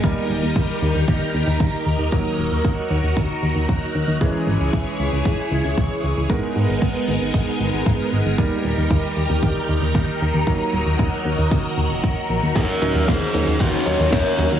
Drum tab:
CC |----------------|----------------|----------------|----------------|
HH |----------------|----------------|----------------|----------------|
SD |----------------|----------------|----------------|----------------|
BD |o---o---o---o---|o---o---o---o---|o---o---o---o---|o---o---o---o---|

CC |----------------|----------------|x---------------|
HH |----------------|----------------|x-xxxxxxxxxxx-xx|
SD |----------------|----------------|----o-------o---|
BD |o---o---o---o---|o---o---o---o---|o---o---o---o---|